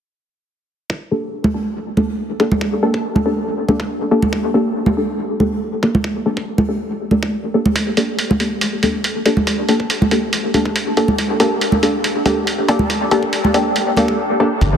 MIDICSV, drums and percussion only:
0, 0, Header, 1, 2, 480
1, 0, Start_track
1, 0, Key_signature, -2, "minor"
1, 0, Tempo, 428571
1, 1008, Time_signature, 4, 2, 24, 8
1, 16542, End_track
2, 0, Start_track
2, 0, Title_t, "Drums"
2, 1007, Note_on_c, 9, 36, 109
2, 1119, Note_off_c, 9, 36, 0
2, 1615, Note_on_c, 9, 63, 79
2, 1727, Note_off_c, 9, 63, 0
2, 2207, Note_on_c, 9, 63, 64
2, 2319, Note_off_c, 9, 63, 0
2, 2686, Note_on_c, 9, 36, 101
2, 2798, Note_off_c, 9, 36, 0
2, 2817, Note_on_c, 9, 63, 84
2, 2926, Note_on_c, 9, 36, 118
2, 2929, Note_off_c, 9, 63, 0
2, 3038, Note_off_c, 9, 36, 0
2, 3293, Note_on_c, 9, 36, 57
2, 3405, Note_off_c, 9, 36, 0
2, 3535, Note_on_c, 9, 63, 85
2, 3647, Note_off_c, 9, 63, 0
2, 4127, Note_on_c, 9, 63, 64
2, 4239, Note_off_c, 9, 63, 0
2, 4253, Note_on_c, 9, 36, 96
2, 4365, Note_off_c, 9, 36, 0
2, 4731, Note_on_c, 9, 63, 91
2, 4843, Note_off_c, 9, 63, 0
2, 4846, Note_on_c, 9, 36, 115
2, 4958, Note_off_c, 9, 36, 0
2, 5446, Note_on_c, 9, 63, 84
2, 5558, Note_off_c, 9, 63, 0
2, 6048, Note_on_c, 9, 63, 63
2, 6160, Note_off_c, 9, 63, 0
2, 6527, Note_on_c, 9, 36, 106
2, 6639, Note_off_c, 9, 36, 0
2, 6661, Note_on_c, 9, 63, 90
2, 6767, Note_on_c, 9, 36, 110
2, 6773, Note_off_c, 9, 63, 0
2, 6879, Note_off_c, 9, 36, 0
2, 7133, Note_on_c, 9, 36, 59
2, 7245, Note_off_c, 9, 36, 0
2, 7372, Note_on_c, 9, 63, 79
2, 7484, Note_off_c, 9, 63, 0
2, 7964, Note_on_c, 9, 63, 65
2, 8076, Note_off_c, 9, 63, 0
2, 8093, Note_on_c, 9, 36, 100
2, 8205, Note_off_c, 9, 36, 0
2, 8574, Note_on_c, 9, 63, 81
2, 8686, Note_off_c, 9, 63, 0
2, 8687, Note_on_c, 9, 36, 109
2, 8688, Note_on_c, 9, 42, 67
2, 8799, Note_off_c, 9, 36, 0
2, 8800, Note_off_c, 9, 42, 0
2, 8927, Note_on_c, 9, 42, 46
2, 9039, Note_off_c, 9, 42, 0
2, 9168, Note_on_c, 9, 42, 68
2, 9280, Note_off_c, 9, 42, 0
2, 9304, Note_on_c, 9, 63, 92
2, 9408, Note_on_c, 9, 42, 48
2, 9416, Note_off_c, 9, 63, 0
2, 9520, Note_off_c, 9, 42, 0
2, 9647, Note_on_c, 9, 42, 73
2, 9759, Note_off_c, 9, 42, 0
2, 9887, Note_on_c, 9, 42, 51
2, 9893, Note_on_c, 9, 63, 56
2, 9999, Note_off_c, 9, 42, 0
2, 10005, Note_off_c, 9, 63, 0
2, 10127, Note_on_c, 9, 42, 74
2, 10239, Note_off_c, 9, 42, 0
2, 10367, Note_on_c, 9, 36, 102
2, 10368, Note_on_c, 9, 42, 49
2, 10479, Note_off_c, 9, 36, 0
2, 10480, Note_off_c, 9, 42, 0
2, 10492, Note_on_c, 9, 63, 85
2, 10604, Note_off_c, 9, 63, 0
2, 10607, Note_on_c, 9, 36, 104
2, 10607, Note_on_c, 9, 42, 68
2, 10719, Note_off_c, 9, 36, 0
2, 10719, Note_off_c, 9, 42, 0
2, 10848, Note_on_c, 9, 42, 47
2, 10960, Note_off_c, 9, 42, 0
2, 10973, Note_on_c, 9, 36, 52
2, 11085, Note_off_c, 9, 36, 0
2, 11087, Note_on_c, 9, 42, 69
2, 11199, Note_off_c, 9, 42, 0
2, 11220, Note_on_c, 9, 63, 80
2, 11327, Note_on_c, 9, 42, 47
2, 11332, Note_off_c, 9, 63, 0
2, 11439, Note_off_c, 9, 42, 0
2, 11567, Note_on_c, 9, 42, 72
2, 11679, Note_off_c, 9, 42, 0
2, 11807, Note_on_c, 9, 42, 47
2, 11807, Note_on_c, 9, 63, 56
2, 11919, Note_off_c, 9, 42, 0
2, 11919, Note_off_c, 9, 63, 0
2, 11934, Note_on_c, 9, 36, 92
2, 12046, Note_off_c, 9, 36, 0
2, 12047, Note_on_c, 9, 42, 71
2, 12159, Note_off_c, 9, 42, 0
2, 12287, Note_on_c, 9, 42, 49
2, 12399, Note_off_c, 9, 42, 0
2, 12412, Note_on_c, 9, 63, 91
2, 12524, Note_off_c, 9, 63, 0
2, 12527, Note_on_c, 9, 36, 103
2, 12527, Note_on_c, 9, 42, 70
2, 12639, Note_off_c, 9, 36, 0
2, 12639, Note_off_c, 9, 42, 0
2, 12767, Note_on_c, 9, 42, 51
2, 12879, Note_off_c, 9, 42, 0
2, 13008, Note_on_c, 9, 42, 75
2, 13120, Note_off_c, 9, 42, 0
2, 13127, Note_on_c, 9, 63, 79
2, 13239, Note_off_c, 9, 63, 0
2, 13248, Note_on_c, 9, 42, 46
2, 13360, Note_off_c, 9, 42, 0
2, 13487, Note_on_c, 9, 42, 77
2, 13599, Note_off_c, 9, 42, 0
2, 13727, Note_on_c, 9, 42, 52
2, 13727, Note_on_c, 9, 63, 64
2, 13839, Note_off_c, 9, 42, 0
2, 13839, Note_off_c, 9, 63, 0
2, 13968, Note_on_c, 9, 42, 77
2, 14080, Note_off_c, 9, 42, 0
2, 14207, Note_on_c, 9, 36, 96
2, 14208, Note_on_c, 9, 42, 53
2, 14319, Note_off_c, 9, 36, 0
2, 14320, Note_off_c, 9, 42, 0
2, 14327, Note_on_c, 9, 63, 85
2, 14439, Note_off_c, 9, 63, 0
2, 14447, Note_on_c, 9, 36, 106
2, 14447, Note_on_c, 9, 42, 73
2, 14559, Note_off_c, 9, 36, 0
2, 14559, Note_off_c, 9, 42, 0
2, 14688, Note_on_c, 9, 42, 52
2, 14800, Note_off_c, 9, 42, 0
2, 14813, Note_on_c, 9, 36, 56
2, 14925, Note_off_c, 9, 36, 0
2, 14927, Note_on_c, 9, 42, 77
2, 15039, Note_off_c, 9, 42, 0
2, 15059, Note_on_c, 9, 63, 82
2, 15168, Note_on_c, 9, 42, 47
2, 15171, Note_off_c, 9, 63, 0
2, 15280, Note_off_c, 9, 42, 0
2, 15409, Note_on_c, 9, 42, 77
2, 15521, Note_off_c, 9, 42, 0
2, 15642, Note_on_c, 9, 63, 60
2, 15649, Note_on_c, 9, 42, 51
2, 15754, Note_off_c, 9, 63, 0
2, 15761, Note_off_c, 9, 42, 0
2, 15773, Note_on_c, 9, 36, 99
2, 15885, Note_off_c, 9, 36, 0
2, 16368, Note_on_c, 9, 36, 111
2, 16369, Note_on_c, 9, 42, 75
2, 16480, Note_off_c, 9, 36, 0
2, 16481, Note_off_c, 9, 42, 0
2, 16542, End_track
0, 0, End_of_file